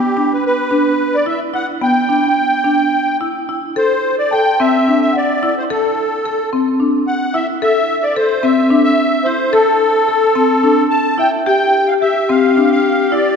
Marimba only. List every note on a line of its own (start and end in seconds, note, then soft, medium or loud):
0.00 0.12 B3 medium
0.17 0.63 D4 medium
0.71 1.18 D4 medium
1.26 1.50 E4 medium
1.54 1.77 E4 medium
1.81 2.05 B3 medium
2.09 2.56 D4 medium
2.64 3.12 D4 medium
3.21 3.44 E4 medium
3.49 3.72 E4 medium
3.76 4.23 A4 medium
4.33 4.56 A4 medium
4.60 4.83 C4 medium
4.88 5.35 D4 medium
5.43 5.66 E4 medium
5.70 6.17 A4 medium
6.26 6.49 A4 medium
6.53 6.76 C4 medium
6.80 7.26 D4 medium
7.34 7.58 E4 medium
7.62 8.08 A4 medium
8.16 8.40 A4 medium
8.43 8.67 C4 medium
8.70 9.17 D4 medium
9.26 9.49 E4 medium
9.53 10.00 A4 medium
10.09 10.32 A4 medium
10.35 10.59 C4 medium
10.63 11.11 D4 medium
11.18 11.42 E4 medium
11.46 11.94 G4 medium
12.02 12.26 G4 medium
12.29 12.53 C4 medium
12.57 13.04 D4 medium
13.12 13.35 E4 medium